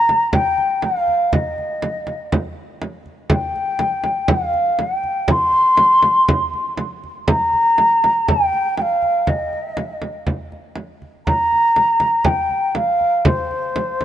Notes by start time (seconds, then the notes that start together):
Already playing: A#5
0.09 frame drum
0.33 G5, frame drum
0.58 frame drum
0.82 F5, frame drum
1.08 frame drum
1.32 D#5, frame drum
1.58 frame drum
1.82 frame drum
2.07 frame drum
2.32 frame drum
2.82 frame drum
3.06 frame drum
3.30 G5, frame drum
3.56 frame drum
3.79 frame drum
4.04 frame drum
4.28 F5, frame drum
4.54 frame drum
4.79 G5, frame drum
5.04 frame drum
5.28 C6, frame drum
5.53 frame drum
5.77 frame drum
6.03 frame drum
6.28 frame drum
6.53 frame drum
6.78 frame drum
7.04 frame drum
7.28 A#5, frame drum
7.53 frame drum
7.78 frame drum
8.04 frame drum
8.28 G5, frame drum
8.53 frame drum
8.78 F5 G5, frame drum
9.02 frame drum
9.27 D#5, frame drum
9.53 frame drum
9.77 frame drum
10.02 frame drum
10.27 frame drum
10.52 frame drum
10.76 frame drum
11.02 frame drum
11.26 A#5, frame drum
11.53 frame drum
11.76 frame drum
12.00 frame drum
12.24 G5, frame drum
12.51 frame drum
12.75 F5, frame drum
13.01 frame drum
13.25 C5, frame drum
13.51 frame drum
13.76 frame drum
14.01 frame drum